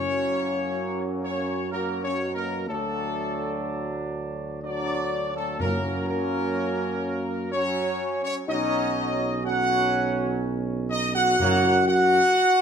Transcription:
0.00 2.70 F#2 medium
0.00 1.68 F#3 medium
0.00 1.68 A#3 medium
0.00 1.20 C#4 loud
0.00 1.07 C#5 loud
1.24 1.69 C#4 medium
1.24 1.69 C#5 medium
1.72 2.65 F#3 medium
1.72 2.17 A#3 medium
1.72 2.02 A#3 medium
1.72 2.02 A#4 medium
2.04 2.34 C#4 medium
2.04 2.34 C#5 loud
2.20 2.69 B2 medium
2.35 2.66 A#3 medium
2.35 2.66 A#4 medium
2.68 5.62 D2 medium
2.68 4.60 F#3 medium
2.68 4.11 A3 medium
2.68 4.62 D4 medium
2.68 4.11 A4 loud
4.63 5.56 F#3 medium
4.63 5.32 D4 medium
4.63 5.56 D4 medium
4.63 5.32 D5 loud
5.36 5.58 A3 medium
5.36 5.58 A4 medium
5.60 7.00 F#2 loud
5.60 8.21 F#2 medium
5.60 7.35 F#3 medium
5.60 6.05 A#3 medium
5.60 7.35 C#4 medium
5.60 6.04 A#4 loud
6.08 7.48 A#3 loud
6.08 7.48 A#4 loud
7.52 8.44 F#3 medium
7.52 8.23 C#4 loud
7.52 8.44 C#4 medium
7.52 8.20 C#5 loud
8.24 8.35 C#4 medium
8.24 8.35 C#5 loud
8.48 11.36 B1 medium
8.48 9.40 F#3 loud
8.48 9.41 C#4 loud
8.48 9.40 D#4 loud
8.48 9.41 D#5 loud
9.44 11.35 F#3 loud
9.44 11.35 C#4 loud
9.44 10.38 F#4 loud
9.44 10.38 F#5 loud
10.90 11.13 D#4 loud
10.90 11.13 D#5 loud
11.15 11.84 F#4 loud
11.15 11.83 F#5 loud
11.39 12.62 F#2 loud
11.39 12.20 F#2 loud
11.39 11.76 F#3 loud
11.39 11.76 A#3 loud
11.87 12.62 F#4 loud
11.87 12.62 F#5 loud

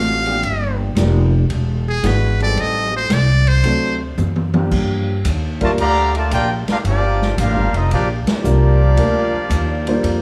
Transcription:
0.00 0.42 A1 loud
0.00 0.40 A3 medium
0.00 0.40 C4 medium
0.00 0.40 D4 medium
0.00 0.40 F4 medium
0.00 0.41 F#4 medium
0.00 0.78 F5 loud
0.25 0.93 F3 medium
0.25 0.93 A#3 medium
0.25 0.94 D4 medium
0.25 0.93 G4 loud
0.25 ride medium
0.43 0.95 G1 medium
0.43 ride medium
0.95 1.48 F1 medium
0.95 1.29 F3 medium
0.95 1.30 G3 medium
0.95 1.30 A#3 medium
0.95 1.30 D4 medium
0.95 1.30 G4 medium
0.95 snare medium
0.95 hi-hat pedal medium
0.95 ride medium
1.50 2.02 E1 medium
1.50 ride medium
1.89 2.08 G#4 loud
2.03 2.56 G#1 medium
2.03 2.57 E3 medium
2.03 2.58 G#3 medium
2.03 2.58 B3 medium
2.03 2.58 D4 medium
2.03 2.58 F#4 medium
2.03 2.42 B4 medium
2.03 snare medium
2.03 hi-hat pedal medium
2.03 ride medium
2.40 3.07 G3 loud
2.40 3.08 C4 medium
2.40 3.08 D#4 medium
2.40 3.08 A4 loud
2.40 2.62 D5 loud
2.40 ride soft
2.57 3.09 A1 medium
2.57 2.96 D#5 loud
2.57 ride medium
2.96 3.15 C5 loud
3.10 3.62 C2 loud
3.10 3.49 D5 loud
3.10 snare medium
3.10 hi-hat pedal medium
3.10 ride medium
3.47 4.01 C5 loud
3.47 ride medium
3.64 4.16 D2 medium
3.64 3.97 F#3 medium
3.64 3.97 A3 medium
3.64 3.98 C4 medium
3.64 3.98 D4 medium
3.64 3.98 A4 medium
3.64 ride medium
4.17 4.70 F#2 loud
4.17 hi-hat pedal medium
4.17 high tom medium
4.36 high tom medium
4.53 5.21 F3 loud
4.53 5.21 A#3 loud
4.53 5.21 D4 loud
4.53 5.21 G4 loud
4.53 high tom medium
4.71 5.23 G2 medium
4.71 kick medium
4.71 crash medium
5.24 5.76 D#2 loud
5.24 hi-hat pedal medium
5.24 ride medium
5.61 5.76 G3 medium
5.61 5.70 A3 medium
5.61 5.76 A#3 medium
5.61 5.76 D4 medium
5.61 5.77 F4 medium
5.61 5.71 F4 medium
5.61 5.77 A#4 medium
5.61 5.71 A#4 medium
5.61 5.71 D5 medium
5.61 5.71 A5 loud
5.61 kick medium
5.61 ride medium
5.78 6.30 D2 medium
5.78 6.13 D3 loud
5.78 6.13 F3 medium
5.78 6.12 A#3 medium
5.78 6.13 G4 loud
5.78 6.13 D5 loud
5.78 6.14 F5 loud
5.78 6.13 A#5 loud
5.78 ride medium
6.15 6.32 A3 medium
6.15 6.33 F4 medium
6.15 6.33 A#4 medium
6.15 6.33 D5 medium
6.15 6.33 A5 loud
6.15 ride medium
6.31 6.65 A#1 loud
6.31 6.50 A#3 medium
6.31 6.49 D4 medium
6.31 6.50 F4 medium
6.31 6.49 G4 medium
6.31 6.50 A#4 medium
6.31 6.50 D5 medium
6.31 6.50 G5 loud
6.31 hi-hat pedal medium
6.31 ride medium
6.68 6.77 A#3 medium
6.68 6.77 D4 medium
6.68 6.78 D4 medium
6.68 6.77 F4 medium
6.68 6.78 G4 medium
6.68 6.78 A#4 medium
6.68 6.78 F5 loud
6.68 muted upright bass stroke soft
6.68 snare medium
6.68 ride medium
6.84 7.36 G1 medium
6.84 7.35 F3 medium
6.84 7.35 A#3 medium
6.84 7.35 D4 medium
6.84 7.35 F4 medium
6.84 7.35 G4 medium
6.84 7.35 D5 loud
6.84 ride medium
7.22 snare soft
7.38 7.56 A1 loud
7.38 7.75 A#3 medium
7.38 7.75 D4 medium
7.38 7.75 F4 medium
7.38 7.75 G4 medium
7.38 7.75 A#4 medium
7.38 7.75 F5 loud
7.38 hi-hat pedal medium
7.38 ride medium
7.56 7.72 G1 medium
7.73 7.90 F1 medium
7.73 7.92 C4 medium
7.73 7.92 D#4 medium
7.73 7.92 F4 medium
7.73 7.92 A4 medium
7.73 7.92 D#5 medium
7.73 ride medium
7.91 8.25 A#1 medium
7.91 8.09 F3 medium
7.91 8.09 A#3 medium
7.91 8.10 A#3 medium
7.91 8.09 D4 medium
7.91 8.09 F4 medium
7.91 8.09 G4 medium
7.91 8.09 D5 loud
7.91 ride medium
8.27 10.22 F3 medium
8.27 10.22 A#3 medium
8.27 10.22 D4 medium
8.27 10.22 F4 medium
8.27 10.22 G4 medium
8.27 10.22 D5 loud
8.27 muted upright bass stroke soft
8.27 snare medium
8.27 ride medium
8.44 8.96 C2 loud
8.44 8.77 G3 medium
8.44 8.77 A#3 medium
8.44 8.77 D4 medium
8.44 8.77 F4 medium
8.44 8.78 A#4 medium
8.44 hi-hat pedal medium
8.97 9.31 D2 loud
8.97 9.30 G3 medium
8.97 9.30 A#3 medium
8.97 9.30 D4 medium
8.97 9.31 F4 medium
8.97 9.31 A#4 medium
8.97 ride medium
9.33 muted upright bass stroke soft
9.50 10.02 D#2 loud
9.50 hi-hat pedal medium
9.50 ride medium
9.87 10.22 G3 medium
9.87 10.22 A#3 medium
9.87 10.22 D4 medium
9.87 10.22 F4 medium
9.87 10.22 C5 medium
9.87 ride medium
10.03 10.22 F2 loud
10.03 ride medium

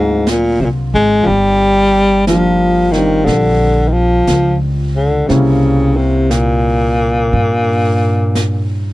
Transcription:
0.00 0.56 D2 medium
0.00 0.31 G#2 medium
0.00 1.27 D3 medium
0.00 1.28 F#3 soft
0.00 1.28 A#3 soft
0.00 1.28 C4 soft
0.00 1.28 F4 medium
0.27 0.62 A#2 medium
0.27 brush sweep soft
0.27 snare soft
0.27 hi-hat pedal soft
0.60 0.91 C2 medium
0.60 0.66 C3 medium
0.65 0.67 A#2 medium
0.94 1.25 G#1 medium
0.94 1.25 G#3 medium
1.23 3.23 G1 medium
1.23 1.28 F3 medium
1.23 2.27 G3 medium
1.23 brush sweep soft
2.27 2.93 F3 medium
2.27 5.30 F3 soft
2.27 2.94 G3 soft
2.27 5.28 A#3 soft
2.27 2.97 D4 soft
2.27 5.30 F4 medium
2.27 brush sweep soft
2.27 snare soft
2.27 hi-hat pedal soft
2.91 3.27 D#3 medium
2.91 5.28 G3 soft
2.91 snare soft
2.97 5.28 C4 soft
2.97 5.32 D4 soft
3.25 4.23 A#1 medium
3.25 3.90 D3 medium
3.25 brush sweep soft
3.25 snare soft
3.88 3.94 D#3 medium
3.92 4.59 F3 medium
4.27 5.25 C#2 medium
4.27 brush sweep soft
4.27 snare soft
4.27 hi-hat pedal soft
4.96 5.29 D3 medium
5.28 7.29 C2 medium
5.28 5.31 C3 medium
5.28 5.98 C#3 medium
5.28 8.93 G3 soft
5.28 8.93 A#3 soft
5.28 8.93 C4 soft
5.28 8.93 C#4 soft
5.28 8.93 E4 medium
5.28 brush sweep soft
5.28 snare soft
5.96 6.32 C3 medium
6.31 8.93 A#2 medium
6.31 brush sweep soft
6.31 snare soft
6.31 hi-hat pedal soft
7.32 8.93 G2 medium
7.32 brush sweep soft
8.35 brush sweep soft
8.35 snare soft
8.35 hi-hat pedal soft

